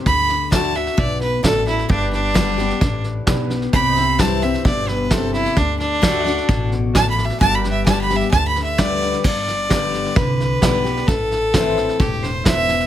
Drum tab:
CC |----------------|----------------|----------------|----------------|
HH |----p-------p---|----p-------p---|----p-------p---|----p-------p---|
SD |o-o-o-ooo-o-o-oo|o-o-o-ooo-o-o-oo|o-o-o-ooo-o-o-oo|o-o-o-ooo-o-o-oo|
BD |o---o---o---o---|o---o---o---o---|o---o---o---o---|o---o---o---o---|

CC |----------------|x---------------|----------------|
HH |----p-------p---|----p-------p---|----p-------p---|
SD |o-o-o-ooo-o-o-oo|o-o-o-ooo-o-o-oo|o-o-o-ooo-o-o-oo|
BD |o---o---o---o---|o---o---o---o---|o---o---o---o---|